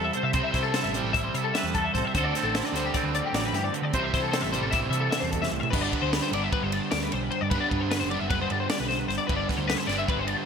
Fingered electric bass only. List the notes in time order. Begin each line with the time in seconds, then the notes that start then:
0.23 C3
0.54 C3
0.83 A1
1.03 A1
1.34 C3
1.63 E2
1.94 A1
2.15 D2
2.43 A1
2.72 D2
3.03 D2
3.33 A1
3.53 G2
3.82 D3
3.93 C2
4.13 C3
4.42 A1
4.62 A1
4.90 C3
5.22 E2
5.52 C2
5.73 G1
6.02 D2
6.31 G1
6.62 G1
6.92 D2
7.13 B1
7.42 G2
7.71 G2
8.01 F#1
8.21 F#1
8.51 G2
8.80 B1
9.08 G1
9.29 G1
9.57 D2
9.88 G1
10.17 G1